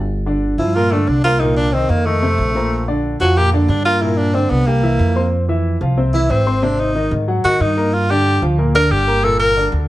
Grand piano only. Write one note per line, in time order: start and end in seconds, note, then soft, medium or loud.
0.26 0.53 D3 medium
0.26 0.53 D4 medium
0.26 0.53 D5 medium
0.59 0.72 F3 medium
0.59 0.72 F4 medium
0.59 0.73 F5 medium
0.75 0.89 A#2 medium
0.75 0.89 A#3 medium
0.75 0.89 A#4 medium
0.92 1.18 D3 medium
0.92 1.19 D4 medium
0.92 1.19 D5 medium
1.24 1.38 A#3 medium
1.24 1.38 A#4 medium
1.24 1.38 A#5 medium
1.41 1.67 A#2 medium
1.41 1.67 A#3 medium
1.41 1.68 A#4 medium
1.74 2.00 D#3 medium
1.74 2.00 D#4 medium
1.74 2.00 D#5 medium
2.06 2.19 D#3 medium
2.06 2.20 D#4 medium
2.06 2.20 D#5 medium
2.22 2.49 C3 medium
2.22 2.49 C4 medium
2.22 2.49 C5 medium
2.55 2.82 A#2 medium
2.55 2.82 C5 medium
2.55 2.82 A#5 medium
2.88 3.14 D3 medium
2.88 3.14 D4 medium
2.88 3.15 D5 medium
3.20 3.34 F3 medium
3.20 3.34 F4 medium
3.20 3.34 F5 medium
3.37 3.50 A#2 medium
3.37 3.50 A#3 medium
3.37 3.50 A#4 medium
3.53 3.80 D3 medium
3.53 3.80 D4 medium
3.53 3.80 D5 medium
3.86 3.99 A#3 medium
3.86 3.99 A#4 medium
3.86 3.99 A#5 medium
4.02 4.28 A#2 medium
4.02 4.29 A#3 medium
4.02 4.29 A#4 medium
4.34 4.61 D3 medium
4.34 4.61 D4 medium
4.34 4.61 D5 medium
4.67 4.80 G3 medium
4.67 4.81 G4 medium
4.67 4.81 G5 medium
4.83 5.10 E3 medium
4.83 5.10 E4 medium
4.83 5.10 E5 medium
5.16 5.43 C4 medium
5.16 5.43 C5 medium
5.16 5.43 C6 medium
5.49 5.75 E3 medium
5.49 5.76 E4 medium
5.49 5.76 E5 medium
5.81 5.95 F3 medium
5.81 5.95 F4 medium
5.81 5.95 F5 medium
5.97 6.11 C3 medium
5.97 6.11 C4 medium
5.97 6.11 C5 medium
6.14 6.41 E3 medium
6.14 6.41 E4 medium
6.14 6.41 E5 medium
6.46 6.60 C4 medium
6.46 6.60 C5 medium
6.46 6.60 C6 medium
6.62 6.89 C3 medium
6.62 6.89 C4 loud
6.62 6.90 C5 medium
6.95 7.22 D#3 medium
6.95 7.22 D#4 medium
6.95 7.22 D#5 medium
7.28 7.41 F#3 medium
7.28 7.41 F#4 medium
7.28 7.42 F#5 medium
7.44 7.71 D#3 medium
7.44 7.71 D#4 medium
7.44 7.71 D#5 medium
7.77 8.04 A#3 medium
7.77 8.04 A#4 medium
7.77 8.04 A#5 medium
8.10 8.36 D3 medium
8.10 8.37 D4 medium
8.10 8.37 D5 medium
8.42 8.56 F3 medium
8.42 8.56 F4 medium
8.42 8.56 F5 medium
8.58 8.72 A#2 medium
8.58 8.72 A#3 medium
8.58 8.72 A#4 medium
8.74 9.01 D3 medium
8.74 9.02 D4 medium
8.74 9.02 D5 medium
9.07 9.21 A#3 medium
9.07 9.21 A#4 medium
9.07 9.21 A#5 medium
9.24 9.50 A#2 loud
9.24 9.51 A#3 loud
9.24 9.51 A#4 loud
9.57 9.83 D3 medium
9.57 9.83 D4 medium
9.57 9.84 D5 medium